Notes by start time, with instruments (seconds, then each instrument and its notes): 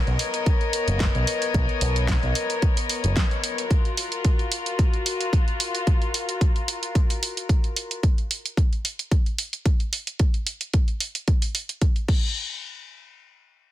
Already playing: string section B3 A#4 C#5 D#5
0.07 picked electric bass B1, closed hi-hat
0.19 open hi-hat
0.34 closed hi-hat
0.46 kick, closed hi-hat
0.61 closed hi-hat
0.73 open hi-hat
0.88 picked electric bass F#1, closed hi-hat
1.00 kick, snare, closed hi-hat
1.15 picked electric bass B1, closed hi-hat
1.27 open hi-hat
1.42 closed hi-hat
1.54 picked electric bass B1, kick, closed hi-hat
1.69 closed hi-hat
1.81 picked electric bass B1, open hi-hat
1.96 closed hi-hat
2.08 kick, snare, closed hi-hat
2.23 picked electric bass B1, closed hi-hat
2.35 open hi-hat
2.50 closed hi-hat
2.62 kick, closed hi-hat
2.77 open hi-hat
2.90 open hi-hat
3.04 picked electric bass F#1, closed hi-hat
3.17 kick, snare, closed hi-hat
3.31 closed hi-hat
3.44 open hi-hat
3.58 closed hi-hat
3.70 string section F4 F#4, kick, closed hi-hat
3.85 closed hi-hat
3.97 open hi-hat
4.12 closed hi-hat
4.25 kick, closed hi-hat
4.39 closed hi-hat
4.52 open hi-hat
4.66 closed hi-hat
4.79 kick, closed hi-hat
4.94 closed hi-hat
5.06 open hi-hat
5.21 closed hi-hat
5.33 kick, closed hi-hat
5.48 closed hi-hat
5.60 open hi-hat
5.75 closed hi-hat
5.87 kick, closed hi-hat
6.02 closed hi-hat
6.14 open hi-hat
6.29 closed hi-hat
6.41 kick, closed hi-hat
6.56 closed hi-hat
6.68 open hi-hat
6.83 closed hi-hat
6.95 kick, closed hi-hat
7.10 open hi-hat
7.23 open hi-hat
7.37 closed hi-hat
7.49 kick, closed hi-hat
7.64 closed hi-hat
7.76 open hi-hat
7.91 closed hi-hat
8.03 kick, closed hi-hat
8.18 closed hi-hat
8.31 open hi-hat
8.46 closed hi-hat
8.57 kick, closed hi-hat
8.73 closed hi-hat
8.85 open hi-hat
8.99 closed hi-hat
9.11 kick, closed hi-hat
9.26 closed hi-hat
9.38 open hi-hat
9.53 closed hi-hat
9.66 kick, closed hi-hat
9.80 closed hi-hat
9.93 open hi-hat
10.07 closed hi-hat
10.19 kick, closed hi-hat
10.34 closed hi-hat
10.47 open hi-hat
10.61 closed hi-hat
10.73 kick, closed hi-hat
10.88 closed hi-hat
11.00 open hi-hat
11.15 closed hi-hat
11.28 kick, closed hi-hat
11.42 open hi-hat
11.55 open hi-hat
11.69 closed hi-hat
11.81 kick, closed hi-hat
11.96 closed hi-hat
12.08 kick, crash